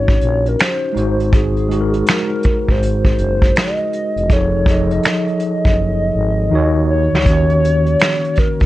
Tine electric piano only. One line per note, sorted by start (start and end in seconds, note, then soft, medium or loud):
0.00 0.99 C#4 medium
0.00 0.94 D#4 medium
0.00 0.97 F#4 medium
0.93 1.62 G#3 medium
0.93 1.63 D#4 medium
0.93 1.64 F#4 medium
0.98 1.65 C5 medium
1.68 3.04 G#3 medium
1.68 3.05 D#4 medium
1.68 3.06 F#4 medium
1.74 1.81 G#4 medium
1.81 3.11 A#4 medium
4.27 4.62 F3 medium
4.27 4.63 D#4 medium
4.27 4.64 G#4 medium
4.32 4.64 A4 medium
4.32 4.65 C#5 medium
4.64 6.00 F3 medium
4.64 6.01 D#4 medium
4.64 6.02 G#4 medium
4.69 6.03 A4 medium
4.69 6.03 D#5 medium
6.49 7.18 D#3 medium
6.49 7.19 D#4 medium
6.49 7.20 F#4 medium
6.55 7.21 C#5 loud
7.25 8.60 D#3 medium
7.25 8.61 A#3 medium
7.29 8.62 C#4 medium
7.29 8.63 F#4 medium